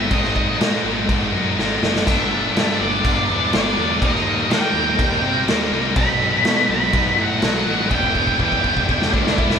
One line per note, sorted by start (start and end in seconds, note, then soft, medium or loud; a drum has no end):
0.00 0.10 D#3 medium
0.00 0.12 F#3 medium
0.00 0.13 B3 medium
0.00 0.10 D#4 medium
0.11 0.53 G#1 medium
0.11 0.60 G#2 loud
0.11 0.61 D#3 loud
0.11 0.38 G#3 loud
0.11 0.38 B3 loud
0.11 0.35 D#4 loud
0.11 0.57 D#5 medium
0.11 kick loud
0.11 crash medium
0.24 snare soft
0.36 0.61 G#3 medium
0.36 0.63 B3 medium
0.36 0.63 D#4 medium
0.36 kick medium
0.60 0.81 G#2 medium
0.60 1.58 G#2 medium
0.60 1.57 D#3 medium
0.60 1.36 G#3 loud
0.60 1.35 B3 loud
0.60 snare loud
0.60 crash medium
0.64 1.33 D#4 loud
0.83 1.05 G#1 medium
0.83 1.57 G#3 medium
0.83 1.58 B3 medium
0.83 1.59 D#4 medium
1.08 1.29 G#1 loud
1.08 kick loud
1.08 crash medium
1.32 1.54 F#2 medium
1.32 1.60 D#4 medium
1.37 1.59 G#3 medium
1.37 1.59 B3 medium
1.57 1.78 G#1 medium
1.57 2.06 D#3 medium
1.57 1.84 G#3 medium
1.57 1.83 B3 medium
1.57 snare medium
1.61 1.82 D#4 medium
1.81 2.02 F#1 medium
1.81 2.06 B3 medium
1.81 2.06 D#4 medium
1.81 snare loud
1.86 2.07 G#3 medium
1.96 snare loud
2.07 2.48 G1 medium
2.07 2.54 G2 loud
2.07 2.56 D3 loud
2.07 2.34 G3 loud
2.07 2.32 B3 medium
2.07 2.31 D4 loud
2.07 2.81 E5 medium
2.07 kick loud
2.07 splash medium
2.07 crash medium
2.32 2.57 G3 soft
2.32 2.57 B3 medium
2.32 2.57 D4 medium
2.56 3.53 G2 loud
2.56 2.77 G2 medium
2.56 3.52 D3 loud
2.56 3.31 G3 loud
2.56 3.30 B3 loud
2.56 3.29 D4 loud
2.56 snare loud
2.56 crash medium
2.79 3.00 G1 medium
2.79 3.52 G3 medium
2.79 3.53 B3 medium
2.79 3.54 D4 medium
2.79 3.50 D5 loud
3.04 3.25 G1 medium
3.04 kick loud
3.04 crash medium
3.29 3.50 E2 medium
3.29 3.53 G3 medium
3.29 3.54 B3 medium
3.29 3.55 D4 medium
3.53 3.74 G1 medium
3.53 4.00 D3 medium
3.53 3.79 G3 medium
3.53 3.77 B3 medium
3.53 3.77 D4 medium
3.53 3.98 D5 medium
3.53 snare loud
3.53 crash medium
3.77 3.98 E2 medium
3.77 4.02 G3 medium
3.77 4.01 B3 medium
3.77 4.01 D4 medium
4.01 4.43 D#2 medium
4.01 4.47 D#3 loud
4.01 4.28 G3 loud
4.01 4.27 A#3 loud
4.01 4.26 D#4 loud
4.01 4.53 D#5 loud
4.01 kick loud
4.01 crash medium
4.15 snare soft
4.26 4.49 G3 medium
4.26 4.50 A#3 medium
4.26 4.51 D#4 medium
4.49 5.47 D#3 loud
4.49 4.71 D#3 medium
4.49 5.26 G3 medium
4.49 5.25 A#3 loud
4.49 5.23 D#4 loud
4.49 5.44 G5 loud
4.49 snare loud
4.49 crash medium
4.72 4.95 D#2 medium
4.72 5.47 G3 medium
4.72 5.48 A#3 medium
4.72 5.49 D#4 medium
4.99 5.20 D#2 medium
4.99 kick loud
4.99 crash medium
5.22 5.43 C3 medium
5.22 5.49 D#4 medium
5.26 5.47 G3 medium
5.26 5.49 A#3 medium
5.47 5.68 D#2 medium
5.47 5.95 D#3 medium
5.47 5.74 G3 medium
5.47 5.73 A#3 medium
5.47 5.71 D#4 medium
5.47 snare loud
5.47 crash medium
5.71 5.93 C2 medium
5.71 5.97 G3 medium
5.71 5.96 A#3 medium
5.71 5.95 D#4 medium
5.96 6.38 B1 loud
5.96 6.43 B2 loud
5.96 6.44 D#3 loud
5.96 6.24 F#3 loud
5.96 6.23 B3 loud
5.96 6.20 D#4 loud
5.96 6.70 B5 loud
5.96 kick loud
5.96 crash medium
6.22 6.44 F#3 soft
6.22 6.46 B3 medium
6.22 6.46 D#4 medium
6.44 6.65 B2 medium
6.44 7.43 B2 loud
6.44 7.42 D#3 loud
6.44 7.20 F#3 loud
6.44 7.20 B3 loud
6.44 7.18 D#4 loud
6.44 snare loud
6.44 crash medium
6.69 6.90 B1 medium
6.69 7.42 F#3 medium
6.69 7.43 B3 medium
6.69 7.43 D#4 medium
6.69 7.21 B5 loud
6.93 7.14 B1 medium
6.93 kick loud
6.93 crash medium
7.18 7.39 A2 loud
7.18 7.43 F#3 medium
7.18 7.45 B3 medium
7.18 7.45 D#4 medium
7.22 7.94 F#5 loud
7.42 7.64 B1 medium
7.42 7.91 D#3 medium
7.42 7.69 F#3 medium
7.42 7.69 B3 medium
7.42 snare loud
7.42 crash medium
7.46 7.66 D#4 medium
7.66 7.88 A1 medium
7.66 7.92 F#3 medium
7.66 7.93 B3 medium
7.66 7.90 D#4 medium
7.91 8.33 E1 medium
7.91 8.40 E3 loud
7.91 8.17 G3 loud
7.91 8.16 B3 loud
7.91 8.14 E4 loud
7.91 8.42 G5 medium
7.91 kick loud
8.03 kick medium
8.15 8.41 G3 medium
8.15 8.42 B3 medium
8.15 8.42 E4 medium
8.15 kick medium
8.27 kick medium
8.39 8.61 E2 medium
8.39 9.38 E3 loud
8.39 9.15 G3 medium
8.39 9.14 B3 loud
8.39 9.59 G5 medium
8.39 kick medium
8.43 9.12 E4 loud
8.52 kick medium
8.63 8.86 E1 medium
8.63 9.37 G3 medium
8.63 9.38 B3 medium
8.63 9.39 E4 medium
8.63 kick medium
8.77 kick medium
8.89 9.10 E1 medium
8.89 kick loud
9.02 snare medium
9.13 9.35 D2 medium
9.13 9.38 G3 medium
9.13 9.40 B3 medium
9.13 9.39 D4 loud
9.13 9.40 E4 medium
9.13 kick loud
9.27 snare medium
9.38 9.59 E1 medium
9.38 9.59 E3 medium
9.38 9.59 G3 medium
9.38 9.59 B3 medium
9.38 9.59 E4 loud
9.38 9.59 E4 medium
9.38 kick loud
9.50 snare medium